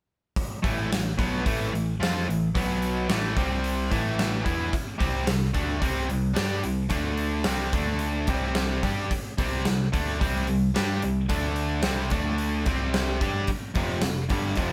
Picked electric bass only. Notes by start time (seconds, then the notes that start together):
0.64 A1
0.92 A1
1.19 B1
1.46 A1
1.72 A1
2.00 F2
2.28 A1
2.55 B1
3.10 A1
3.37 C2
3.92 A1
4.46 E2
5.01 C2
5.28 C2
5.55 D2
5.82 C2
6.09 C2
6.37 G2
6.64 C2
6.91 D2
7.46 C2
7.74 D2
8.28 C2
8.84 G2
9.39 C2
9.67 C2
9.94 D2
10.22 C2
10.49 C2
10.77 G2
11.04 C2
11.31 D2
11.85 C2
12.12 D2
12.67 C2
13.22 G2
13.76 F1
14.04 F1
14.31 G1
14.58 F1